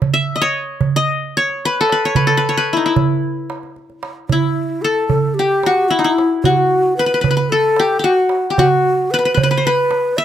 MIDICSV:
0, 0, Header, 1, 4, 480
1, 0, Start_track
1, 0, Tempo, 534759
1, 21, Time_signature, 4, 2, 24, 8
1, 9200, End_track
2, 0, Start_track
2, 0, Title_t, "Qanun"
2, 0, Program_c, 0, 107
2, 0, Note_on_c, 0, 64, 74
2, 122, Note_on_c, 0, 76, 90
2, 169, Note_off_c, 0, 64, 0
2, 320, Note_on_c, 0, 75, 72
2, 373, Note_off_c, 0, 76, 0
2, 373, Note_on_c, 0, 73, 96
2, 860, Note_off_c, 0, 75, 0
2, 863, Note_on_c, 0, 75, 96
2, 1226, Note_off_c, 0, 73, 0
2, 1230, Note_on_c, 0, 73, 89
2, 1484, Note_on_c, 0, 71, 87
2, 1622, Note_on_c, 0, 69, 82
2, 1717, Note_off_c, 0, 75, 0
2, 1723, Note_off_c, 0, 71, 0
2, 1726, Note_on_c, 0, 71, 87
2, 1839, Note_off_c, 0, 73, 0
2, 1843, Note_on_c, 0, 73, 80
2, 1934, Note_off_c, 0, 71, 0
2, 1938, Note_on_c, 0, 71, 80
2, 2034, Note_off_c, 0, 69, 0
2, 2037, Note_on_c, 0, 69, 81
2, 2127, Note_off_c, 0, 71, 0
2, 2131, Note_on_c, 0, 71, 82
2, 2230, Note_off_c, 0, 73, 0
2, 2234, Note_on_c, 0, 73, 86
2, 2307, Note_off_c, 0, 71, 0
2, 2311, Note_on_c, 0, 71, 85
2, 2450, Note_on_c, 0, 64, 70
2, 2484, Note_on_c, 0, 63, 58
2, 2538, Note_off_c, 0, 64, 0
2, 2565, Note_on_c, 0, 64, 69
2, 2619, Note_off_c, 0, 63, 0
2, 3088, Note_off_c, 0, 69, 0
2, 3149, Note_off_c, 0, 73, 0
2, 3292, Note_off_c, 0, 71, 0
2, 3815, Note_off_c, 0, 64, 0
2, 3881, Note_on_c, 0, 64, 68
2, 4348, Note_on_c, 0, 69, 76
2, 4840, Note_on_c, 0, 67, 73
2, 5083, Note_on_c, 0, 66, 80
2, 5131, Note_off_c, 0, 64, 0
2, 5137, Note_off_c, 0, 67, 0
2, 5300, Note_on_c, 0, 64, 73
2, 5375, Note_on_c, 0, 63, 65
2, 5400, Note_off_c, 0, 69, 0
2, 5422, Note_off_c, 0, 64, 0
2, 5425, Note_on_c, 0, 64, 73
2, 5479, Note_off_c, 0, 63, 0
2, 5789, Note_off_c, 0, 66, 0
2, 5792, Note_on_c, 0, 66, 82
2, 6277, Note_on_c, 0, 71, 82
2, 6336, Note_off_c, 0, 71, 0
2, 6340, Note_on_c, 0, 71, 60
2, 6406, Note_off_c, 0, 71, 0
2, 6409, Note_on_c, 0, 71, 66
2, 6470, Note_off_c, 0, 71, 0
2, 6474, Note_on_c, 0, 71, 61
2, 6554, Note_off_c, 0, 71, 0
2, 6558, Note_on_c, 0, 71, 69
2, 6609, Note_off_c, 0, 71, 0
2, 6613, Note_on_c, 0, 71, 62
2, 6676, Note_off_c, 0, 64, 0
2, 6751, Note_on_c, 0, 69, 80
2, 6959, Note_off_c, 0, 66, 0
2, 6997, Note_on_c, 0, 67, 84
2, 7171, Note_off_c, 0, 67, 0
2, 7175, Note_on_c, 0, 67, 61
2, 7216, Note_on_c, 0, 66, 88
2, 7270, Note_off_c, 0, 67, 0
2, 7594, Note_off_c, 0, 71, 0
2, 7632, Note_on_c, 0, 67, 64
2, 7686, Note_off_c, 0, 66, 0
2, 7710, Note_on_c, 0, 66, 85
2, 7764, Note_off_c, 0, 67, 0
2, 7802, Note_off_c, 0, 69, 0
2, 8202, Note_on_c, 0, 71, 89
2, 8242, Note_off_c, 0, 71, 0
2, 8246, Note_on_c, 0, 71, 64
2, 8302, Note_off_c, 0, 71, 0
2, 8306, Note_on_c, 0, 71, 71
2, 8384, Note_off_c, 0, 71, 0
2, 8388, Note_on_c, 0, 71, 66
2, 8465, Note_off_c, 0, 71, 0
2, 8468, Note_on_c, 0, 71, 80
2, 8531, Note_off_c, 0, 71, 0
2, 8534, Note_on_c, 0, 71, 69
2, 8594, Note_on_c, 0, 72, 69
2, 8648, Note_off_c, 0, 71, 0
2, 8676, Note_on_c, 0, 71, 89
2, 8730, Note_off_c, 0, 72, 0
2, 8877, Note_off_c, 0, 66, 0
2, 9138, Note_on_c, 0, 76, 97
2, 9200, Note_off_c, 0, 71, 0
2, 9200, Note_off_c, 0, 76, 0
2, 9200, End_track
3, 0, Start_track
3, 0, Title_t, "Ney"
3, 0, Program_c, 1, 77
3, 3849, Note_on_c, 1, 64, 68
3, 4325, Note_on_c, 1, 69, 68
3, 4339, Note_off_c, 1, 64, 0
3, 4553, Note_off_c, 1, 69, 0
3, 4559, Note_on_c, 1, 69, 70
3, 4797, Note_on_c, 1, 67, 72
3, 4810, Note_off_c, 1, 69, 0
3, 5286, Note_on_c, 1, 64, 68
3, 5299, Note_off_c, 1, 67, 0
3, 5418, Note_off_c, 1, 64, 0
3, 5427, Note_on_c, 1, 64, 63
3, 5644, Note_off_c, 1, 64, 0
3, 5769, Note_on_c, 1, 66, 70
3, 5830, Note_on_c, 1, 67, 59
3, 5843, Note_off_c, 1, 66, 0
3, 5901, Note_on_c, 1, 66, 75
3, 5915, Note_off_c, 1, 67, 0
3, 6249, Note_off_c, 1, 66, 0
3, 6254, Note_on_c, 1, 71, 81
3, 6480, Note_off_c, 1, 71, 0
3, 6505, Note_on_c, 1, 71, 76
3, 6730, Note_on_c, 1, 69, 80
3, 6744, Note_off_c, 1, 71, 0
3, 7225, Note_on_c, 1, 66, 80
3, 7238, Note_off_c, 1, 69, 0
3, 7582, Note_off_c, 1, 66, 0
3, 7696, Note_on_c, 1, 66, 83
3, 8176, Note_on_c, 1, 71, 83
3, 8190, Note_off_c, 1, 66, 0
3, 8418, Note_on_c, 1, 72, 82
3, 8431, Note_off_c, 1, 71, 0
3, 8589, Note_off_c, 1, 72, 0
3, 8589, Note_on_c, 1, 72, 60
3, 8664, Note_on_c, 1, 71, 86
3, 8678, Note_off_c, 1, 72, 0
3, 9131, Note_on_c, 1, 76, 90
3, 9144, Note_off_c, 1, 71, 0
3, 9200, Note_off_c, 1, 76, 0
3, 9200, End_track
4, 0, Start_track
4, 0, Title_t, "Darbuka"
4, 16, Note_on_c, 9, 64, 86
4, 106, Note_off_c, 9, 64, 0
4, 136, Note_on_c, 9, 62, 23
4, 226, Note_off_c, 9, 62, 0
4, 370, Note_on_c, 9, 62, 23
4, 460, Note_off_c, 9, 62, 0
4, 724, Note_on_c, 9, 64, 83
4, 813, Note_off_c, 9, 64, 0
4, 971, Note_on_c, 9, 62, 24
4, 1060, Note_off_c, 9, 62, 0
4, 1344, Note_on_c, 9, 62, 25
4, 1433, Note_off_c, 9, 62, 0
4, 1700, Note_on_c, 9, 63, 62
4, 1790, Note_off_c, 9, 63, 0
4, 1932, Note_on_c, 9, 64, 89
4, 2022, Note_off_c, 9, 64, 0
4, 2061, Note_on_c, 9, 62, 26
4, 2151, Note_off_c, 9, 62, 0
4, 2299, Note_on_c, 9, 62, 26
4, 2389, Note_off_c, 9, 62, 0
4, 2660, Note_on_c, 9, 64, 95
4, 2750, Note_off_c, 9, 64, 0
4, 2781, Note_on_c, 9, 62, 28
4, 2871, Note_off_c, 9, 62, 0
4, 2901, Note_on_c, 9, 62, 25
4, 2990, Note_off_c, 9, 62, 0
4, 3139, Note_on_c, 9, 63, 65
4, 3229, Note_off_c, 9, 63, 0
4, 3260, Note_on_c, 9, 62, 26
4, 3350, Note_off_c, 9, 62, 0
4, 3378, Note_on_c, 9, 62, 26
4, 3468, Note_off_c, 9, 62, 0
4, 3497, Note_on_c, 9, 62, 25
4, 3587, Note_off_c, 9, 62, 0
4, 3615, Note_on_c, 9, 63, 65
4, 3704, Note_off_c, 9, 63, 0
4, 3854, Note_on_c, 9, 64, 82
4, 3944, Note_off_c, 9, 64, 0
4, 3977, Note_on_c, 9, 62, 24
4, 4066, Note_off_c, 9, 62, 0
4, 4573, Note_on_c, 9, 64, 84
4, 4663, Note_off_c, 9, 64, 0
4, 4823, Note_on_c, 9, 62, 24
4, 4913, Note_off_c, 9, 62, 0
4, 5057, Note_on_c, 9, 63, 64
4, 5147, Note_off_c, 9, 63, 0
4, 5306, Note_on_c, 9, 62, 24
4, 5396, Note_off_c, 9, 62, 0
4, 5428, Note_on_c, 9, 62, 23
4, 5518, Note_off_c, 9, 62, 0
4, 5552, Note_on_c, 9, 63, 64
4, 5641, Note_off_c, 9, 63, 0
4, 5781, Note_on_c, 9, 64, 82
4, 5871, Note_off_c, 9, 64, 0
4, 5905, Note_on_c, 9, 62, 23
4, 5995, Note_off_c, 9, 62, 0
4, 6499, Note_on_c, 9, 64, 85
4, 6589, Note_off_c, 9, 64, 0
4, 6731, Note_on_c, 9, 62, 24
4, 6821, Note_off_c, 9, 62, 0
4, 6969, Note_on_c, 9, 63, 65
4, 7059, Note_off_c, 9, 63, 0
4, 7211, Note_on_c, 9, 62, 24
4, 7301, Note_off_c, 9, 62, 0
4, 7345, Note_on_c, 9, 62, 23
4, 7435, Note_off_c, 9, 62, 0
4, 7444, Note_on_c, 9, 63, 62
4, 7534, Note_off_c, 9, 63, 0
4, 7702, Note_on_c, 9, 64, 96
4, 7792, Note_off_c, 9, 64, 0
4, 8414, Note_on_c, 9, 64, 100
4, 8504, Note_off_c, 9, 64, 0
4, 8659, Note_on_c, 9, 62, 24
4, 8749, Note_off_c, 9, 62, 0
4, 8892, Note_on_c, 9, 63, 74
4, 8982, Note_off_c, 9, 63, 0
4, 9136, Note_on_c, 9, 62, 26
4, 9200, Note_off_c, 9, 62, 0
4, 9200, End_track
0, 0, End_of_file